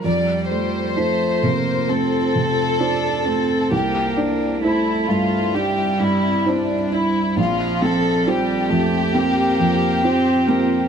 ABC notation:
X:1
M:4/4
L:1/8
Q:1/4=66
K:F
V:1 name="Ambient pad"
[FAc]8 | [Cde]8 | [CFc]8 |]
V:2 name="Violin section"
d c3 A4 | G D E F G E D E | F A G6 |]
V:3 name="Felt piano"
F,, A, [Fc] C, A, C, [Fc] A, | C,, D [Ec] G,, D G,, [Ec] D | B,,, C [Fc] F,, C F,, [Fc] C |]
V:4 name="Cello"
G,2 A, B, C2 D C | B,2 A,2 G,3 z | F,2 G, A, B,2 C B, |]